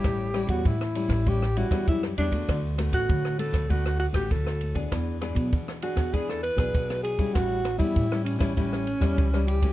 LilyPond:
<<
  \new Staff \with { instrumentName = "Alto saxophone" } { \time 4/4 \key a \mixolydian \tempo 4 = 98 g'8. fis'16 e'8 e'8 g'8 fis'8 e'8 d'8~ | d'16 r8 fis'8. a'8 fis'16 fis'16 fis'16 g'16 a'8. r16 | r4. fis'8 gis'16 a'16 b'4 gis'8 | fis'8. e'8. cis'16 cis'4.~ cis'16 g'8 | }
  \new Staff \with { instrumentName = "Nylon-string guitar" } { \time 4/4 \key a \mixolydian << { <g cis' e'>8 <g cis' e'>8. r16 <g cis' e'>8 <g cis' e'>16 r16 <g cis' e'>16 <g cis' e'>8. <g cis' e'>16 <a b fis'>16~ | <a b fis'>8 <a b fis'>4 <a b fis'>8 <a b fis'>8 r16 <a b fis'>16 <a b fis'>8 r16 <b d' gis'>16~ | <b d' gis'>8 <b d' gis'>4 <b d' gis'>8 <b d' gis'>8 r16 <b d' gis'>4 <g cis' e'>16~ | <g cis' e'>8 r16 <g cis' e'>8 <g cis' e'>8 <g cis' e'>16 <g cis' e'>8 r16 <g cis' e'>8 <g cis' e'>8 <fis a cis'>16 | } \\ { a,4 e4 a,4 e4 | d4 a,4 d4 a,4 | e4 b,4 e4 b,4 | a,4 e4 a,4 e4 | } >> }
  \new Staff \with { instrumentName = "Upright bass" } { \clef bass \time 4/4 \key a \mixolydian a,,8. e,16 a,8. a,,4 e,16 fis,8 e,8 | d,8. a,,16 d8. d,4 a,,16 d,4 | e,8. b,,16 e8. e,4 b,,16 b,,4 | a,,8. e,16 a,8. a,,4 e,16 cis,4 | }
  \new DrumStaff \with { instrumentName = "Drums" } \drummode { \time 4/4 <bd cymr ss>8 <cymr ss>16 <bd cymr>16 <bd cymr>16 ss16 cymr16 <bd cymr ss>16 <bd cymr>16 ss16 cymr16 <bd cymr ss>16 <bd cymr>16 ss16 cymr16 <bd cymr>16 | <bd cymr ss>8 <cymr ss>16 <bd cymr>16 <bd cymr>16 ss16 cymr16 <bd cymr ss>16 <bd cymr>16 ss16 cymr16 <bd cymr ss>16 <bd cymr>16 ss16 cymr16 <bd cymr>16 | <bd cymr ss>8 <cymr ss>16 <bd cymr>16 <bd cymr>16 ss16 cymr16 <bd cymr ss>16 <bd cymr>16 ss16 cymr16 <bd cymr ss>16 <bd cymr>16 ss16 cymr16 <bd cymr>16 | <bd cymr ss>8 <cymr ss>16 <bd cymr>16 <bd cymr>16 ss16 cymr16 <bd cymr ss>16 <bd cymr>16 ss16 cymr16 <bd cymr ss>16 <bd cymr>16 ss16 cymr16 <bd cymr>16 | }
>>